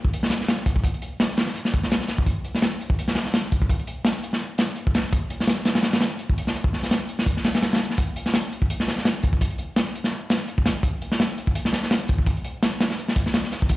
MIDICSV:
0, 0, Header, 1, 2, 480
1, 0, Start_track
1, 0, Tempo, 357143
1, 1129, Time_signature, 4, 2, 24, 8
1, 18504, End_track
2, 0, Start_track
2, 0, Title_t, "Drums"
2, 62, Note_on_c, 9, 36, 98
2, 182, Note_on_c, 9, 42, 82
2, 196, Note_off_c, 9, 36, 0
2, 308, Note_on_c, 9, 38, 61
2, 316, Note_off_c, 9, 42, 0
2, 402, Note_off_c, 9, 38, 0
2, 402, Note_on_c, 9, 38, 58
2, 402, Note_on_c, 9, 42, 72
2, 536, Note_off_c, 9, 38, 0
2, 537, Note_off_c, 9, 42, 0
2, 550, Note_on_c, 9, 38, 39
2, 649, Note_on_c, 9, 42, 93
2, 651, Note_off_c, 9, 38, 0
2, 651, Note_on_c, 9, 38, 119
2, 783, Note_off_c, 9, 42, 0
2, 786, Note_off_c, 9, 38, 0
2, 888, Note_on_c, 9, 36, 93
2, 889, Note_on_c, 9, 42, 77
2, 1018, Note_off_c, 9, 36, 0
2, 1018, Note_on_c, 9, 36, 99
2, 1023, Note_off_c, 9, 42, 0
2, 1122, Note_off_c, 9, 36, 0
2, 1122, Note_on_c, 9, 36, 102
2, 1132, Note_on_c, 9, 42, 84
2, 1257, Note_off_c, 9, 36, 0
2, 1263, Note_off_c, 9, 42, 0
2, 1263, Note_on_c, 9, 42, 46
2, 1369, Note_off_c, 9, 42, 0
2, 1369, Note_on_c, 9, 42, 67
2, 1504, Note_off_c, 9, 42, 0
2, 1610, Note_on_c, 9, 38, 106
2, 1616, Note_on_c, 9, 42, 87
2, 1745, Note_off_c, 9, 38, 0
2, 1751, Note_off_c, 9, 42, 0
2, 1842, Note_on_c, 9, 42, 88
2, 1851, Note_on_c, 9, 38, 108
2, 1975, Note_off_c, 9, 38, 0
2, 1975, Note_on_c, 9, 38, 51
2, 1976, Note_off_c, 9, 42, 0
2, 2091, Note_on_c, 9, 42, 68
2, 2110, Note_off_c, 9, 38, 0
2, 2219, Note_on_c, 9, 38, 54
2, 2225, Note_off_c, 9, 42, 0
2, 2328, Note_on_c, 9, 42, 64
2, 2335, Note_on_c, 9, 36, 87
2, 2353, Note_off_c, 9, 38, 0
2, 2462, Note_off_c, 9, 42, 0
2, 2467, Note_on_c, 9, 38, 50
2, 2469, Note_off_c, 9, 36, 0
2, 2575, Note_on_c, 9, 42, 82
2, 2577, Note_off_c, 9, 38, 0
2, 2577, Note_on_c, 9, 38, 107
2, 2701, Note_off_c, 9, 38, 0
2, 2701, Note_on_c, 9, 38, 48
2, 2709, Note_off_c, 9, 42, 0
2, 2797, Note_on_c, 9, 42, 69
2, 2800, Note_off_c, 9, 38, 0
2, 2800, Note_on_c, 9, 38, 49
2, 2932, Note_off_c, 9, 42, 0
2, 2934, Note_off_c, 9, 38, 0
2, 2935, Note_on_c, 9, 36, 93
2, 3043, Note_off_c, 9, 36, 0
2, 3043, Note_on_c, 9, 36, 121
2, 3044, Note_on_c, 9, 42, 89
2, 3178, Note_off_c, 9, 36, 0
2, 3179, Note_off_c, 9, 42, 0
2, 3284, Note_on_c, 9, 42, 65
2, 3419, Note_off_c, 9, 42, 0
2, 3420, Note_on_c, 9, 38, 51
2, 3516, Note_on_c, 9, 42, 78
2, 3525, Note_off_c, 9, 38, 0
2, 3525, Note_on_c, 9, 38, 120
2, 3650, Note_off_c, 9, 42, 0
2, 3659, Note_off_c, 9, 38, 0
2, 3774, Note_on_c, 9, 42, 68
2, 3895, Note_on_c, 9, 36, 104
2, 3908, Note_off_c, 9, 42, 0
2, 4014, Note_on_c, 9, 42, 88
2, 4029, Note_off_c, 9, 36, 0
2, 4135, Note_on_c, 9, 38, 57
2, 4149, Note_off_c, 9, 42, 0
2, 4235, Note_off_c, 9, 38, 0
2, 4235, Note_on_c, 9, 38, 64
2, 4256, Note_on_c, 9, 42, 67
2, 4369, Note_off_c, 9, 38, 0
2, 4371, Note_on_c, 9, 38, 37
2, 4390, Note_off_c, 9, 42, 0
2, 4486, Note_off_c, 9, 38, 0
2, 4486, Note_on_c, 9, 38, 112
2, 4491, Note_on_c, 9, 42, 91
2, 4620, Note_off_c, 9, 38, 0
2, 4625, Note_off_c, 9, 42, 0
2, 4731, Note_on_c, 9, 42, 65
2, 4733, Note_on_c, 9, 36, 88
2, 4862, Note_off_c, 9, 36, 0
2, 4862, Note_on_c, 9, 36, 98
2, 4865, Note_off_c, 9, 42, 0
2, 4966, Note_off_c, 9, 36, 0
2, 4966, Note_on_c, 9, 36, 104
2, 4967, Note_on_c, 9, 42, 91
2, 5099, Note_off_c, 9, 42, 0
2, 5099, Note_on_c, 9, 42, 47
2, 5100, Note_off_c, 9, 36, 0
2, 5205, Note_off_c, 9, 42, 0
2, 5205, Note_on_c, 9, 42, 72
2, 5340, Note_off_c, 9, 42, 0
2, 5438, Note_on_c, 9, 38, 127
2, 5450, Note_on_c, 9, 42, 94
2, 5572, Note_off_c, 9, 38, 0
2, 5585, Note_off_c, 9, 42, 0
2, 5687, Note_on_c, 9, 42, 74
2, 5817, Note_on_c, 9, 38, 53
2, 5822, Note_off_c, 9, 42, 0
2, 5952, Note_off_c, 9, 38, 0
2, 6156, Note_on_c, 9, 42, 77
2, 6165, Note_on_c, 9, 38, 98
2, 6291, Note_off_c, 9, 42, 0
2, 6299, Note_off_c, 9, 38, 0
2, 6397, Note_on_c, 9, 42, 67
2, 6532, Note_off_c, 9, 42, 0
2, 6543, Note_on_c, 9, 36, 88
2, 6646, Note_on_c, 9, 42, 77
2, 6651, Note_on_c, 9, 38, 109
2, 6677, Note_off_c, 9, 36, 0
2, 6780, Note_off_c, 9, 42, 0
2, 6786, Note_off_c, 9, 38, 0
2, 6890, Note_on_c, 9, 36, 115
2, 6890, Note_on_c, 9, 42, 91
2, 7024, Note_off_c, 9, 36, 0
2, 7024, Note_off_c, 9, 42, 0
2, 7127, Note_on_c, 9, 42, 75
2, 7262, Note_off_c, 9, 42, 0
2, 7264, Note_on_c, 9, 38, 55
2, 7359, Note_off_c, 9, 38, 0
2, 7359, Note_on_c, 9, 38, 120
2, 7360, Note_on_c, 9, 42, 83
2, 7493, Note_off_c, 9, 38, 0
2, 7494, Note_off_c, 9, 42, 0
2, 7594, Note_on_c, 9, 42, 80
2, 7600, Note_on_c, 9, 38, 106
2, 7729, Note_off_c, 9, 42, 0
2, 7730, Note_off_c, 9, 38, 0
2, 7730, Note_on_c, 9, 38, 109
2, 7735, Note_on_c, 9, 42, 89
2, 7831, Note_off_c, 9, 38, 0
2, 7831, Note_on_c, 9, 38, 103
2, 7837, Note_off_c, 9, 42, 0
2, 7837, Note_on_c, 9, 42, 77
2, 7965, Note_off_c, 9, 38, 0
2, 7970, Note_off_c, 9, 42, 0
2, 7970, Note_on_c, 9, 42, 82
2, 7974, Note_on_c, 9, 38, 101
2, 8071, Note_off_c, 9, 38, 0
2, 8071, Note_on_c, 9, 38, 105
2, 8083, Note_off_c, 9, 42, 0
2, 8083, Note_on_c, 9, 42, 78
2, 8205, Note_off_c, 9, 38, 0
2, 8218, Note_off_c, 9, 42, 0
2, 8317, Note_on_c, 9, 42, 68
2, 8451, Note_off_c, 9, 42, 0
2, 8460, Note_on_c, 9, 36, 79
2, 8572, Note_on_c, 9, 42, 79
2, 8594, Note_off_c, 9, 36, 0
2, 8697, Note_on_c, 9, 38, 50
2, 8707, Note_off_c, 9, 42, 0
2, 8813, Note_on_c, 9, 42, 65
2, 8832, Note_off_c, 9, 38, 0
2, 8927, Note_on_c, 9, 36, 89
2, 8948, Note_off_c, 9, 42, 0
2, 9046, Note_on_c, 9, 38, 42
2, 9062, Note_off_c, 9, 36, 0
2, 9180, Note_off_c, 9, 38, 0
2, 9181, Note_on_c, 9, 38, 42
2, 9187, Note_on_c, 9, 42, 61
2, 9289, Note_off_c, 9, 38, 0
2, 9289, Note_on_c, 9, 38, 107
2, 9292, Note_off_c, 9, 42, 0
2, 9292, Note_on_c, 9, 42, 94
2, 9423, Note_off_c, 9, 38, 0
2, 9427, Note_off_c, 9, 42, 0
2, 9526, Note_on_c, 9, 42, 68
2, 9661, Note_off_c, 9, 42, 0
2, 9662, Note_on_c, 9, 38, 56
2, 9764, Note_on_c, 9, 36, 112
2, 9773, Note_on_c, 9, 42, 90
2, 9796, Note_off_c, 9, 38, 0
2, 9898, Note_off_c, 9, 36, 0
2, 9905, Note_on_c, 9, 38, 44
2, 9907, Note_off_c, 9, 42, 0
2, 10004, Note_on_c, 9, 42, 73
2, 10010, Note_off_c, 9, 38, 0
2, 10010, Note_on_c, 9, 38, 99
2, 10137, Note_off_c, 9, 42, 0
2, 10137, Note_on_c, 9, 42, 84
2, 10144, Note_off_c, 9, 38, 0
2, 10145, Note_on_c, 9, 38, 107
2, 10246, Note_off_c, 9, 38, 0
2, 10246, Note_on_c, 9, 38, 98
2, 10247, Note_off_c, 9, 42, 0
2, 10247, Note_on_c, 9, 42, 77
2, 10381, Note_off_c, 9, 38, 0
2, 10382, Note_off_c, 9, 42, 0
2, 10385, Note_on_c, 9, 42, 69
2, 10389, Note_on_c, 9, 38, 98
2, 10436, Note_off_c, 9, 38, 0
2, 10436, Note_off_c, 9, 42, 0
2, 10436, Note_on_c, 9, 38, 90
2, 10436, Note_on_c, 9, 42, 70
2, 10497, Note_off_c, 9, 42, 0
2, 10497, Note_on_c, 9, 42, 59
2, 10571, Note_off_c, 9, 38, 0
2, 10622, Note_on_c, 9, 38, 48
2, 10631, Note_off_c, 9, 42, 0
2, 10721, Note_on_c, 9, 42, 92
2, 10725, Note_on_c, 9, 36, 116
2, 10756, Note_off_c, 9, 38, 0
2, 10855, Note_off_c, 9, 42, 0
2, 10860, Note_off_c, 9, 36, 0
2, 10966, Note_on_c, 9, 42, 74
2, 11098, Note_on_c, 9, 38, 53
2, 11101, Note_off_c, 9, 42, 0
2, 11203, Note_off_c, 9, 38, 0
2, 11203, Note_on_c, 9, 38, 124
2, 11207, Note_on_c, 9, 42, 98
2, 11338, Note_off_c, 9, 38, 0
2, 11342, Note_off_c, 9, 42, 0
2, 11457, Note_on_c, 9, 42, 65
2, 11583, Note_on_c, 9, 36, 93
2, 11592, Note_off_c, 9, 42, 0
2, 11694, Note_on_c, 9, 42, 86
2, 11717, Note_off_c, 9, 36, 0
2, 11827, Note_on_c, 9, 38, 58
2, 11828, Note_off_c, 9, 42, 0
2, 11933, Note_off_c, 9, 38, 0
2, 11933, Note_on_c, 9, 38, 56
2, 11940, Note_on_c, 9, 42, 70
2, 12068, Note_off_c, 9, 38, 0
2, 12070, Note_on_c, 9, 38, 40
2, 12074, Note_off_c, 9, 42, 0
2, 12165, Note_on_c, 9, 42, 92
2, 12167, Note_off_c, 9, 38, 0
2, 12167, Note_on_c, 9, 38, 108
2, 12299, Note_off_c, 9, 42, 0
2, 12302, Note_off_c, 9, 38, 0
2, 12404, Note_on_c, 9, 42, 75
2, 12413, Note_on_c, 9, 36, 97
2, 12538, Note_off_c, 9, 36, 0
2, 12538, Note_off_c, 9, 42, 0
2, 12538, Note_on_c, 9, 36, 97
2, 12647, Note_on_c, 9, 42, 94
2, 12649, Note_off_c, 9, 36, 0
2, 12649, Note_on_c, 9, 36, 116
2, 12775, Note_off_c, 9, 42, 0
2, 12775, Note_on_c, 9, 42, 44
2, 12783, Note_off_c, 9, 36, 0
2, 12879, Note_off_c, 9, 42, 0
2, 12879, Note_on_c, 9, 42, 67
2, 13013, Note_off_c, 9, 42, 0
2, 13120, Note_on_c, 9, 42, 90
2, 13122, Note_on_c, 9, 38, 113
2, 13255, Note_off_c, 9, 42, 0
2, 13256, Note_off_c, 9, 38, 0
2, 13376, Note_on_c, 9, 42, 68
2, 13495, Note_on_c, 9, 38, 58
2, 13511, Note_off_c, 9, 42, 0
2, 13630, Note_off_c, 9, 38, 0
2, 13841, Note_on_c, 9, 42, 82
2, 13845, Note_on_c, 9, 38, 106
2, 13975, Note_off_c, 9, 42, 0
2, 13979, Note_off_c, 9, 38, 0
2, 14083, Note_on_c, 9, 42, 65
2, 14217, Note_off_c, 9, 42, 0
2, 14219, Note_on_c, 9, 36, 93
2, 14322, Note_on_c, 9, 38, 100
2, 14324, Note_on_c, 9, 42, 87
2, 14354, Note_off_c, 9, 36, 0
2, 14457, Note_off_c, 9, 38, 0
2, 14458, Note_off_c, 9, 42, 0
2, 14558, Note_on_c, 9, 36, 109
2, 14566, Note_on_c, 9, 42, 87
2, 14692, Note_off_c, 9, 36, 0
2, 14701, Note_off_c, 9, 42, 0
2, 14807, Note_on_c, 9, 42, 65
2, 14940, Note_on_c, 9, 38, 59
2, 14942, Note_off_c, 9, 42, 0
2, 15050, Note_off_c, 9, 38, 0
2, 15050, Note_on_c, 9, 38, 125
2, 15052, Note_on_c, 9, 42, 86
2, 15185, Note_off_c, 9, 38, 0
2, 15186, Note_off_c, 9, 42, 0
2, 15291, Note_on_c, 9, 42, 67
2, 15419, Note_on_c, 9, 36, 89
2, 15426, Note_off_c, 9, 42, 0
2, 15527, Note_on_c, 9, 42, 99
2, 15553, Note_off_c, 9, 36, 0
2, 15658, Note_on_c, 9, 38, 55
2, 15661, Note_off_c, 9, 42, 0
2, 15760, Note_off_c, 9, 38, 0
2, 15760, Note_on_c, 9, 38, 61
2, 15768, Note_on_c, 9, 42, 69
2, 15894, Note_off_c, 9, 38, 0
2, 15899, Note_on_c, 9, 38, 45
2, 15903, Note_off_c, 9, 42, 0
2, 16006, Note_off_c, 9, 38, 0
2, 16006, Note_on_c, 9, 38, 127
2, 16014, Note_on_c, 9, 42, 87
2, 16140, Note_off_c, 9, 38, 0
2, 16149, Note_off_c, 9, 42, 0
2, 16239, Note_on_c, 9, 42, 65
2, 16252, Note_on_c, 9, 36, 94
2, 16374, Note_off_c, 9, 42, 0
2, 16377, Note_off_c, 9, 36, 0
2, 16377, Note_on_c, 9, 36, 92
2, 16484, Note_off_c, 9, 36, 0
2, 16484, Note_on_c, 9, 36, 116
2, 16485, Note_on_c, 9, 42, 84
2, 16618, Note_off_c, 9, 36, 0
2, 16620, Note_off_c, 9, 42, 0
2, 16623, Note_on_c, 9, 42, 46
2, 16725, Note_off_c, 9, 42, 0
2, 16725, Note_on_c, 9, 42, 76
2, 16860, Note_off_c, 9, 42, 0
2, 16969, Note_on_c, 9, 38, 118
2, 16970, Note_on_c, 9, 42, 96
2, 17104, Note_off_c, 9, 38, 0
2, 17105, Note_off_c, 9, 42, 0
2, 17210, Note_on_c, 9, 38, 117
2, 17211, Note_on_c, 9, 42, 74
2, 17341, Note_off_c, 9, 38, 0
2, 17341, Note_on_c, 9, 38, 56
2, 17346, Note_off_c, 9, 42, 0
2, 17449, Note_on_c, 9, 42, 57
2, 17476, Note_off_c, 9, 38, 0
2, 17584, Note_off_c, 9, 42, 0
2, 17585, Note_on_c, 9, 38, 57
2, 17687, Note_on_c, 9, 42, 78
2, 17688, Note_on_c, 9, 36, 100
2, 17719, Note_off_c, 9, 38, 0
2, 17821, Note_off_c, 9, 42, 0
2, 17822, Note_on_c, 9, 38, 51
2, 17823, Note_off_c, 9, 36, 0
2, 17927, Note_off_c, 9, 38, 0
2, 17927, Note_on_c, 9, 38, 127
2, 17929, Note_on_c, 9, 42, 92
2, 18061, Note_off_c, 9, 38, 0
2, 18061, Note_on_c, 9, 38, 47
2, 18063, Note_off_c, 9, 42, 0
2, 18168, Note_off_c, 9, 38, 0
2, 18168, Note_on_c, 9, 38, 46
2, 18170, Note_on_c, 9, 42, 73
2, 18303, Note_off_c, 9, 38, 0
2, 18305, Note_off_c, 9, 42, 0
2, 18307, Note_on_c, 9, 36, 88
2, 18402, Note_on_c, 9, 42, 95
2, 18408, Note_off_c, 9, 36, 0
2, 18408, Note_on_c, 9, 36, 110
2, 18504, Note_off_c, 9, 36, 0
2, 18504, Note_off_c, 9, 42, 0
2, 18504, End_track
0, 0, End_of_file